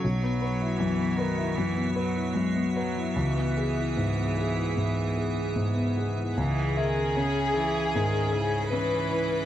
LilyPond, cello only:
\new Staff \with { instrumentName = "Cello" } { \clef bass \time 4/4 \key cis \minor \tempo 4 = 76 fis4 e8 dis8 e8 fis8 gis8 fis8 | e2.~ e8. r16 | e8 dis8 cis8 e8 dis8 cis8 e4 | }